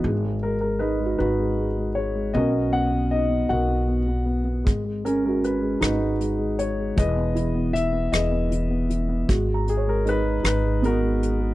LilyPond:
<<
  \new Staff \with { instrumentName = "Felt piano" } { \time 6/8 \key gis \minor \tempo 4. = 52 <b dis' fis'>8. r16 dis'16 fis'4~ fis'16 r8 | cis'4 dis'4~ dis'16 r8. | r8 cis'16 fis'8. dis'4~ dis'16 r16 | r8 e'4~ e'16 r4 r16 |
fis'16 ais''16 cis''8 dis'4 b4 | }
  \new Staff \with { instrumentName = "Grand piano" } { \time 6/8 \key gis \minor << { r8 ais'16 ais'16 b'8 b'4 cis''8 | dis''8 fis''8 dis''8 fis''4 r8 | r8 ais'16 ais'16 b'8 b'4 cis''8 | dis''4 e''8 dis''4 r8 |
r8 gis'16 ais'16 b'8 b'8 ais'4 | } \\ { r4. fis'4. | <fis' ais'>4. <ais' dis''>4. | r4. fis'4. | <gis' b'>4. <gis' b'>4. |
r2 <dis' fis'>4 | } >> }
  \new Staff \with { instrumentName = "Grand piano" } { \clef bass \time 6/8 \key gis \minor gis16 gis16 gis16 gis16 gis16 gis16 dis'16 gis16 gis16 gis16 gis16 gis16 | b16 b16 b16 b16 b16 b16 fis'16 b16 b16 b16 b16 b16 | gis16 gis16 gis16 gis16 gis16 gis16 dis'16 gis16 gis16 gis16 gis16 gis16 | e16 b16 e16 b16 e16 b16 e16 b16 e16 b16 e16 b16 |
gis16 gis16 gis16 gis16 gis16 gis16 dis'16 gis16 gis16 gis16 gis16 gis16 | }
  \new Staff \with { instrumentName = "Upright bass" } { \clef bass \time 6/8 \key gis \minor gis,,4. gis,,4. | b,,4. b,,4. | gis,,4. gis,,4. | e,,4. e,,4. |
gis,,4. gis,,4. | }
  \new DrumStaff \with { instrumentName = "Drums" } \drummode { \time 6/8 r4. r4. | r4. r4. | <hh bd>8 hh8 hh8 <hh ss>8 hh8 hh8 | <hh bd>8 hh8 hh8 <hh ss>8 hh8 hh8 |
<hh bd>8 hh8 hh8 <hh ss>8 hh8 hh8 | }
>>